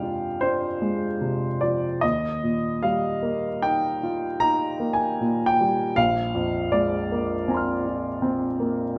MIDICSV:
0, 0, Header, 1, 2, 480
1, 0, Start_track
1, 0, Tempo, 794702
1, 1222, Time_signature, 5, 2, 24, 8
1, 3139, Tempo, 752823
1, 5551, End_track
2, 0, Start_track
2, 0, Title_t, "Grand piano"
2, 0, Program_c, 0, 0
2, 0, Control_c, 0, 64, 127
2, 0, Note_on_c, 0, 41, 41
2, 0, Note_on_c, 0, 48, 31
2, 0, Note_on_c, 0, 53, 32
2, 0, Note_on_c, 0, 56, 34
2, 0, Note_on_c, 0, 62, 30
2, 0, Note_on_c, 0, 77, 57
2, 0, Note_on_c, 0, 79, 66
2, 0, Note_on_c, 0, 80, 67
2, 15, Note_on_c, 0, 65, 33
2, 163, Note_off_c, 0, 62, 0
2, 246, Note_on_c, 0, 72, 68
2, 254, Note_off_c, 0, 77, 0
2, 257, Note_on_c, 0, 62, 34
2, 403, Note_off_c, 0, 65, 0
2, 493, Note_off_c, 0, 56, 0
2, 493, Note_on_c, 0, 56, 34
2, 641, Note_off_c, 0, 62, 0
2, 731, Note_off_c, 0, 48, 0
2, 731, Note_on_c, 0, 48, 35
2, 878, Note_off_c, 0, 56, 0
2, 971, Note_off_c, 0, 72, 0
2, 971, Note_on_c, 0, 74, 59
2, 976, Note_off_c, 0, 53, 0
2, 976, Note_on_c, 0, 53, 32
2, 1120, Note_off_c, 0, 48, 0
2, 1197, Note_off_c, 0, 41, 0
2, 1216, Note_on_c, 0, 75, 67
2, 1218, Note_off_c, 0, 74, 0
2, 1221, Note_off_c, 0, 53, 0
2, 1221, Note_on_c, 0, 39, 41
2, 1234, Control_c, 0, 64, 0
2, 1238, Note_off_c, 0, 80, 0
2, 1239, Note_off_c, 0, 79, 0
2, 1347, Control_c, 0, 64, 127
2, 1469, Note_on_c, 0, 46, 30
2, 1706, Note_off_c, 0, 75, 0
2, 1707, Note_on_c, 0, 77, 64
2, 1712, Note_on_c, 0, 55, 35
2, 1852, Note_off_c, 0, 46, 0
2, 1947, Note_on_c, 0, 58, 37
2, 2092, Note_off_c, 0, 55, 0
2, 2185, Note_off_c, 0, 77, 0
2, 2189, Note_on_c, 0, 79, 66
2, 2192, Note_on_c, 0, 63, 31
2, 2331, Note_off_c, 0, 58, 0
2, 2436, Note_on_c, 0, 65, 39
2, 2572, Note_off_c, 0, 63, 0
2, 2658, Note_on_c, 0, 82, 83
2, 2663, Note_on_c, 0, 63, 39
2, 2666, Note_off_c, 0, 79, 0
2, 2811, Note_off_c, 0, 65, 0
2, 2897, Note_on_c, 0, 58, 36
2, 2977, Note_off_c, 0, 82, 0
2, 2980, Note_on_c, 0, 80, 67
2, 3043, Note_off_c, 0, 63, 0
2, 3145, Note_on_c, 0, 46, 38
2, 3284, Note_off_c, 0, 58, 0
2, 3303, Note_off_c, 0, 80, 0
2, 3309, Note_on_c, 0, 79, 72
2, 3401, Note_on_c, 0, 55, 34
2, 3535, Note_off_c, 0, 46, 0
2, 3602, Note_off_c, 0, 39, 0
2, 3627, Note_on_c, 0, 77, 82
2, 3631, Note_off_c, 0, 79, 0
2, 3633, Note_on_c, 0, 34, 49
2, 3636, Note_off_c, 0, 55, 0
2, 3640, Control_c, 0, 64, 0
2, 3738, Control_c, 0, 64, 127
2, 3872, Note_on_c, 0, 41, 39
2, 4109, Note_on_c, 0, 74, 68
2, 4110, Note_off_c, 0, 77, 0
2, 4115, Note_on_c, 0, 56, 36
2, 4256, Note_off_c, 0, 41, 0
2, 4364, Note_on_c, 0, 58, 41
2, 4496, Note_off_c, 0, 56, 0
2, 4594, Note_on_c, 0, 60, 37
2, 4599, Note_on_c, 0, 80, 29
2, 4613, Note_on_c, 0, 82, 30
2, 4634, Note_on_c, 0, 84, 31
2, 4651, Note_on_c, 0, 89, 30
2, 4737, Note_off_c, 0, 58, 0
2, 4836, Note_on_c, 0, 65, 41
2, 4972, Note_off_c, 0, 60, 0
2, 5067, Note_on_c, 0, 60, 44
2, 5212, Note_off_c, 0, 65, 0
2, 5307, Note_on_c, 0, 58, 41
2, 5445, Note_off_c, 0, 60, 0
2, 5538, Note_off_c, 0, 74, 0
2, 5551, Note_off_c, 0, 34, 0
2, 5551, Note_off_c, 0, 58, 0
2, 5551, Note_off_c, 0, 80, 0
2, 5551, Note_off_c, 0, 82, 0
2, 5551, Note_off_c, 0, 84, 0
2, 5551, Note_off_c, 0, 89, 0
2, 5551, End_track
0, 0, End_of_file